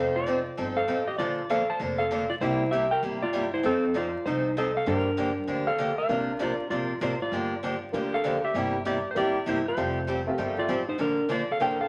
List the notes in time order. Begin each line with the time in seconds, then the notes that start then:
Already playing: F1 F3 C4 D#4 A4 F5
0.16 F4 D5
0.26 F3 C4 D#4 A4
0.57 G1 F3 C4 D#4 A4
0.77 A4 F5
0.88 A1 F3 C4 D#4 A4
1.07 G4 D#5
1.18 A#1 D3 F3 A#3 D4 F4 A4 D5
1.50 D3 F3 A#3 D4 A4 F5
1.70 C5 A5
1.79 F1 D3 F3 A#3 D4 A4
1.98 A4 F5
2.11 D3 F3 A#3 D4 A4
2.29 F4 D5
2.40 C2 C3 G3 A#3 E4 G4 C5
2.71 C3 G3 A#3 E4 G4 E5
2.91 A#4 G5
3.02 G1 C3 G3 A#3 E4 G4
3.23 F4 D5
3.33 C3 G3 A#3 E4 G4
3.54 E4 C5
3.63 F2 F3 C4 D#4 A4
3.94 F3 C4 D#4 F4 A4 D5
4.26 C2 F3 C4 D#4 A4 C5
4.57 F3 C4 D#4 A4 D#5
4.77 A4 F5
4.86 G2 D3 F3 A#3 D4 G4 A#4
5.17 D3 F3 A#3 D4 G4
5.47 D2 D3 F3 A#3 D4 G4
5.67 A4 F5
5.78 D3 F3 A#3 D4 G4
5.98 A#4 F5
6.08 A#1 C3 F3 A#3 C4 D4 F4 A#4
6.39 C3 F3 A#3 D4 F4 A#4 D5
6.70 A#1 C3 F3 A#3 D4 F4 A#4 D5
7.01 A1 C3 F3 A#3 D4 F4 A#4 C5
7.22 F4 D5
7.32 G1 D3 F3 A#3 D4 G4
7.63 D3 F3 A#3 D4 G4
7.92 D2 D3 F3 A#3 D4 F4 G4
8.14 A4 F5
8.24 D3 F3 A#3 D4 G4
8.44 G4 E5
8.54 G1 C3 G3 A#3 E4 G4
8.85 C3 G3 A#3 E4 G4 D5
9.11 A#3 C4 C5
9.16 A1 C3 G3 A#3 E4 G4 D5
9.46 G1 C3 G3 A#3 E4 G4 C5
9.68 F4 C5
9.76 F1 F3 G3 A3 C4 F4 G4 A4
10.07 F3 G3 C4 G4 A4
10.27 A3 C4 F4 G4
10.34 F3 C4 A#4
10.38 G1 G3 G4 A4
10.59 F4 D5
10.68 A1 F3 G3 C4 G4 A4
10.89 D#4 C5
10.98 A#1 D3 F3 A#3 D4 A4 A#4
11.29 D3 F3 A#3 D4 F4 A4 D5
11.51 A4 F5
11.60 A1 D3 F3 A#3 D4 F4 A4 A#4 G5
11.81 A4 F5